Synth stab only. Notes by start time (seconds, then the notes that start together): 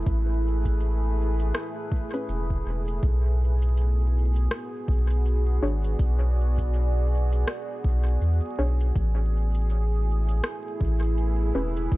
2.14 C#4 G#4 B4
5.63 D4 G#4 C#5
8.58 D4 G#4 C#5
11.55 C#4 G#4 B4